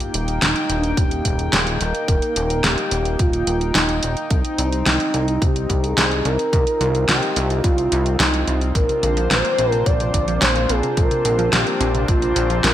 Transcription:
Already playing: A#3 D#4 G5
0.00 closed hi-hat
0.14 D#1, closed hi-hat
0.28 closed hi-hat
0.42 D#1 D#4, snare, closed hi-hat
0.56 closed hi-hat
0.70 D#1, closed hi-hat
0.79 D4
0.83 closed hi-hat
0.97 D#1 G4, kick, closed hi-hat
1.11 closed hi-hat
1.25 D#1, kick, closed hi-hat
1.39 G#4, closed hi-hat
1.53 D#1, snare, closed hi-hat
1.67 closed hi-hat
1.81 D#1 A#4, closed hi-hat
1.95 closed hi-hat
2.08 D#1, kick, closed hi-hat
2.22 closed hi-hat
2.36 D#1, closed hi-hat
2.50 closed hi-hat
2.63 D#1 G4, snare, closed hi-hat
2.78 closed hi-hat
2.91 D#1, closed hi-hat
3.05 closed hi-hat
3.19 D#1 F4, kick, closed hi-hat
3.33 closed hi-hat
3.47 D#1, closed hi-hat
3.61 closed hi-hat
3.75 D#1 D#4, snare, closed hi-hat
3.89 closed hi-hat
4.03 D#1, closed hi-hat
4.17 closed hi-hat
4.30 C2 C4, kick, closed hi-hat
4.45 closed hi-hat
4.58 C2, closed hi-hat
4.72 closed hi-hat
4.86 C2 D#4, snare, closed hi-hat
5.00 closed hi-hat
5.14 C2, closed hi-hat
5.28 closed hi-hat
5.42 C2 G4, kick, closed hi-hat
5.56 closed hi-hat
5.70 C2, kick, closed hi-hat
5.84 G#4, closed hi-hat
5.97 C2, snare, closed hi-hat
6.11 closed hi-hat
6.25 C2 A#4, closed hi-hat
6.39 closed hi-hat
6.53 C2 F4, kick, closed hi-hat
6.67 closed hi-hat
6.81 C2, closed hi-hat
6.95 closed hi-hat
7.09 C2 G4, snare, closed hi-hat
7.23 closed hi-hat
7.36 C2, closed hi-hat
7.50 closed hi-hat
7.64 C2 F4, kick, closed hi-hat
7.78 closed hi-hat
7.92 C2, closed hi-hat
8.06 closed hi-hat
8.20 C2 D#4, snare, closed hi-hat
8.34 closed hi-hat
8.48 C2, closed hi-hat
8.61 closed hi-hat
8.75 A#1 A#3 D4 A#4 C5, kick, closed hi-hat
8.89 C3, closed hi-hat
9.03 A#1 D3, closed hi-hat
9.17 F3, closed hi-hat
9.31 A#1 C5, snare, closed hi-hat
9.45 A#3, closed hi-hat
9.58 A#1 C4, closed hi-hat
9.72 C3 A#4, closed hi-hat
9.86 A#1 D5, kick, closed hi-hat
10.00 C3, closed hi-hat
10.14 A#1 D3, kick, closed hi-hat
10.28 F3, closed hi-hat
10.42 A#1 C5, snare, closed hi-hat
10.56 A#3, closed hi-hat
10.69 A#1 C4 G#4, closed hi-hat
10.83 C3, closed hi-hat
10.97 A#1 A#4, kick, closed hi-hat
11.11 C3, closed hi-hat
11.25 A#1 D3, closed hi-hat
11.39 F3, closed hi-hat
11.53 A#1 G4, snare, closed hi-hat
11.67 A#3, closed hi-hat
11.81 A#1 C4, closed hi-hat
11.94 C3, closed hi-hat
12.08 A#1 F4, kick, closed hi-hat
12.22 C3, closed hi-hat
12.36 A#1 D3, closed hi-hat
12.50 F3, closed hi-hat
12.64 A#1 A#4, snare, closed hi-hat

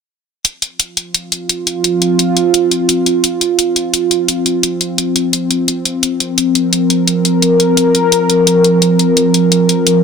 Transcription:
0.45 F3 C4 F4, closed hi-hat
0.62 closed hi-hat
0.80 closed hi-hat
0.97 closed hi-hat
1.14 closed hi-hat
1.32 closed hi-hat
1.49 closed hi-hat
1.67 closed hi-hat
1.84 closed hi-hat
2.02 closed hi-hat
2.19 closed hi-hat
2.37 closed hi-hat
2.54 closed hi-hat
2.71 closed hi-hat
2.89 closed hi-hat
3.06 closed hi-hat
3.24 closed hi-hat
3.41 closed hi-hat
3.59 closed hi-hat
3.76 closed hi-hat
3.94 closed hi-hat
4.11 closed hi-hat
4.28 closed hi-hat
4.46 closed hi-hat
4.63 closed hi-hat
4.81 closed hi-hat
4.98 closed hi-hat
5.16 closed hi-hat
5.33 closed hi-hat
5.51 closed hi-hat
5.68 closed hi-hat
5.85 closed hi-hat
6.03 A#4, closed hi-hat
6.20 closed hi-hat
6.38 closed hi-hat
6.55 closed hi-hat
6.73 closed hi-hat
6.90 closed hi-hat
7.08 closed hi-hat
7.25 closed hi-hat
7.42 closed hi-hat
7.60 closed hi-hat
7.77 closed hi-hat
7.95 closed hi-hat
8.12 closed hi-hat
8.30 closed hi-hat
8.47 closed hi-hat
8.64 closed hi-hat
8.82 closed hi-hat
8.99 closed hi-hat
9.17 closed hi-hat
9.34 closed hi-hat
9.52 closed hi-hat
9.69 closed hi-hat
9.87 closed hi-hat

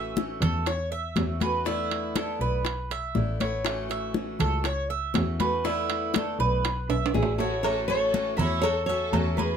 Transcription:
Already playing: A1 E3 A3 C#4 F#4 E5
0.16 E3 A3 C#4 F#4, high bongo, high conga
0.41 E2 A4, high bongo, high conga, low conga, high timbale
0.66 C#5, muted steel-string acoustic guitar stroke, high bongo, high conga, high timbale
0.92 E5, high conga
1.16 E2 E3 A3 C#4 F#4, high bongo, low bongo, high conga, high timbale, low timbale
1.40 A3 C#4 F#4 B4, high bongo, high conga, high timbale
1.65 D3 A3 B3 E4, high bongo, high conga
1.91 high bongo, high conga, high timbale
2.16 D3 A3 B3 E4 A4, high bongo, high conga, high timbale
2.40 B1 B4, high bongo
2.64 muted steel-string acoustic guitar stroke, high bongo, high conga, high timbale
2.91 E5, high conga, high timbale
3.15 A1 D3 A3 B3 E4, high bongo, low bongo, high conga
3.40 A3 B3 E4 C#5, high bongo, high conga, high timbale
3.65 E3 A3 C#4 F#4, high bongo, high conga, high timbale
3.89 E5, high bongo, high conga, high timbale
4.14 E3 A3 C#4 F#4, high bongo, high conga
4.39 C#2 A4, high bongo, high conga, low conga, high timbale
4.64 C#5, muted steel-string acoustic guitar stroke, high bongo, high conga, high timbale
4.90 E5, high conga
5.14 E2 E3 A3 C#4 F#4, high bongo, low bongo, high conga, high timbale, low timbale
5.39 A3 C#4 F#4 B4, high bongo, high conga, high timbale
5.64 D3 A3 B3 E4, high bongo, high conga
5.90 high bongo, high conga, high timbale
6.14 D3 A3 B3 E4 A4, high bongo, high conga, high timbale
6.39 B1 B4, high bongo
6.64 muted steel-string acoustic guitar stroke, high bongo, high conga, high timbale
6.89 B1 E5, high conga, high timbale
7.06 high timbale
7.14 A1 D3 A3 B3 E4 G#4, high bongo, low bongo, high conga
7.23 low timbale
7.38 A3 B3 E4 F#4 A4 C#5, high bongo, low timbale
7.63 E3 A3 C#4 F#4 A4 C#5, cowbell, high conga, low agogo
7.87 A4 C#5, high conga
8.14 E3 A3 C#4 F#4, cowbell, high conga, low agogo
8.37 E2 A3 C#4 E4 F#4 C#5 E5, high conga, low conga, low agogo
8.62 A4 C#5, muted steel-string acoustic guitar stroke, cowbell, high conga, low agogo
8.86 C#4 F#4 A4 C#5 E5, high conga
8.91 A3
9.13 E2 E3 A3 C#4 F#4, cowbell, high conga, low timbale, low agogo
9.37 G#4 B4, high conga, low agogo

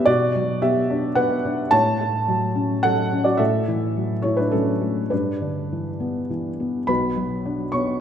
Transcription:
Already playing: G2 E3 B3 D4 G4 B4
0.06 B2 F#4 D5
0.35 F#3
0.62 B3 G4 E5
0.90 D4
1.15 B3 B4 F#5
1.45 D4
1.71 A2 C#5 A5
2.01 A3
2.28 F#3
2.55 C#4
2.83 F#3 A4 F#5
3.12 C#4
3.24 F#4 D5
3.37 A2 A4 E5
3.68 E3
3.97 F#3
4.22 A3 E4 C#5
4.37 D4 B4
4.51 F#3 C#4 A4
4.81 A3
5.10 G2 D4 B4
5.42 D3
5.72 E3
6.00 B3
6.30 E3
6.60 B3
6.87 B1 B2 B4 B5
7.17 F#3
7.46 D4
7.72 B3 C#5 C#6

